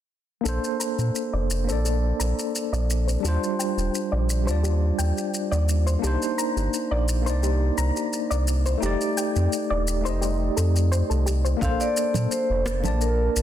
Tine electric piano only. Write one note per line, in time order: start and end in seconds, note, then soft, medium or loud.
0.41 1.62 A#3 medium
0.41 1.63 D4 medium
0.46 1.64 A4 medium
0.46 1.65 C5 medium
1.64 3.18 A#3 medium
1.64 3.20 D4 medium
1.70 3.21 A4 medium
1.70 3.22 D5 medium
3.20 4.41 G3 medium
3.20 4.42 D4 medium
3.26 4.44 F4 medium
3.26 4.45 C5 medium
4.43 5.97 G3 medium
4.43 5.98 D4 medium
4.48 6.00 F4 medium
4.48 6.01 D5 medium
5.99 7.20 A#3 medium
5.99 7.21 D4 medium
6.04 7.22 D#4 medium
6.04 7.24 C5 loud
7.22 8.76 A#3 medium
7.22 8.77 D4 medium
7.27 8.79 D#4 medium
7.27 8.80 D5 medium
8.78 9.99 A3 medium
8.78 10.00 D#4 medium
8.83 10.01 G4 medium
8.83 10.03 D5 medium
10.01 11.55 A3 medium
10.01 11.57 D#4 medium
10.06 11.58 G4 medium
10.06 11.59 D#5 medium
11.57 12.78 A#3 medium
11.57 12.79 D4 medium
11.62 12.80 A4 medium
11.62 12.81 C5 loud
12.80 13.42 A#3 medium
12.80 13.42 D4 medium
12.85 13.42 D5 medium
12.85 13.42 A5 medium